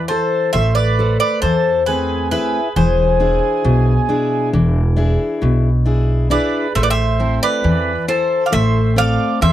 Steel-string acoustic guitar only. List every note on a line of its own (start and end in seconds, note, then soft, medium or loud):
0.00 0.52 E3 medium
0.11 0.81 A4 medium
0.11 0.82 C5 medium
0.55 1.41 A3 medium
0.99 1.70 A4 medium
0.99 1.70 C5 medium
1.44 2.29 E3 medium
1.88 2.58 A3 soft
1.88 2.59 C4 soft
1.88 2.31 B4 soft
2.32 2.67 E4 soft
2.32 2.67 B4 soft
2.32 2.68 E5 medium
2.76 3.62 E3 medium
3.20 3.91 D4 soft
3.20 3.91 E4 soft
3.20 3.91 G#4 medium
3.65 4.51 B2 medium
4.09 4.80 D4 medium
4.09 4.80 E4 soft
4.09 4.80 G#4 medium
4.53 5.40 E3 medium
4.96 5.68 D4 soft
4.96 5.68 E4 soft
4.96 5.69 G#4 medium
5.42 6.28 B2 medium
5.86 6.29 D4 soft
5.86 6.29 E4 soft
5.86 6.30 G#4 medium
6.30 6.66 D4 medium
6.30 6.66 E4 soft
6.30 6.67 G#4 medium
6.76 7.62 A3 medium
7.19 7.91 C4 medium
7.19 7.91 E4 soft
7.19 7.91 A4 soft
7.64 8.50 E3 medium
8.08 8.79 E4 medium
8.08 8.80 A4 soft
8.08 8.80 C5 medium
8.52 9.39 A3 medium
8.96 9.53 C4 medium
8.96 9.53 A4 medium
8.96 9.53 C5 medium
9.41 9.53 E3 medium